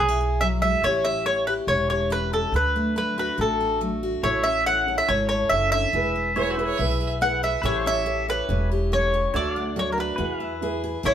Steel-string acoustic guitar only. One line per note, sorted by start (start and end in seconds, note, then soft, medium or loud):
0.00 0.36 B2 medium
0.00 0.81 G#4 medium
0.08 0.19 E4 medium
0.21 0.81 E4 medium
0.42 0.62 F#3 medium
0.63 0.84 G#3 medium
0.83 1.22 A2 medium
0.83 1.25 E3 soft
0.83 1.04 C#4 medium
0.83 1.25 E4 medium
0.83 1.46 G4 medium
1.05 1.68 C#4 medium
1.26 1.64 E3 medium
1.26 2.51 E4 medium
1.47 1.89 G4 medium
1.69 2.07 A2 medium
1.69 2.09 C#4 medium
1.91 2.32 G4 medium
2.10 2.49 E3 medium
2.10 2.51 C#4 medium
2.33 2.51 G4 medium
2.54 2.92 D3 medium
2.54 2.96 D4 soft
2.76 3.38 A3 medium
2.96 3.34 F#3 medium
2.96 4.22 D4 medium
3.18 3.59 F#4 medium
3.38 3.76 A2 medium
3.38 3.80 A3 medium
3.61 4.02 F#4 medium
3.81 4.19 F#3 medium
3.81 4.44 A3 medium
4.03 4.24 F#4 medium
4.24 4.62 A2 medium
4.24 4.66 E4 medium
4.44 5.08 C#4 medium
4.66 5.05 E3 medium
4.66 6.15 E4 medium
4.88 5.30 A4 medium
5.10 5.92 C#4 medium
5.32 5.92 A4 medium
5.51 5.72 C#3 medium
5.73 5.94 D3 medium
5.93 6.32 E3 medium
5.93 6.36 G#4 medium
6.16 6.80 E4 soft
6.36 6.74 B3 medium
6.36 6.58 G#4 medium
6.59 6.99 G#4 medium
6.79 7.17 B2 medium
6.79 7.21 E4 medium
7.01 7.42 G#4 medium
7.21 7.60 B3 medium
7.21 7.62 E4 medium
7.43 7.62 G#4 medium
7.63 8.02 A2 medium
7.63 8.05 E3 medium
7.63 7.85 C#4 medium
7.63 8.05 E4 medium
7.63 8.27 G4 medium
7.86 8.49 C#4 medium
8.06 8.45 E3 medium
8.06 9.32 E4 medium
8.28 8.70 G4 medium
8.49 8.87 A2 medium
8.49 8.92 C#4 medium
8.72 9.12 G4 medium
8.92 9.30 E3 medium
8.92 9.32 C#4 medium
9.14 9.32 G4 medium
9.34 9.72 D3 medium
9.34 9.76 D4 medium
9.56 10.20 A3 medium
9.76 10.15 F#3 medium
9.76 10.17 D4 medium
9.98 10.18 F#4 medium
10.18 10.57 E3 medium
10.18 10.61 G#4 medium
10.40 11.02 E4 medium
10.62 11.00 B3 medium
10.62 10.82 G#4 medium
10.84 11.02 G#4 medium
11.03 11.14 A2 medium
11.03 11.14 E3 medium
11.03 11.14 C#4 medium
11.03 11.14 E4 medium
11.03 11.14 A4 medium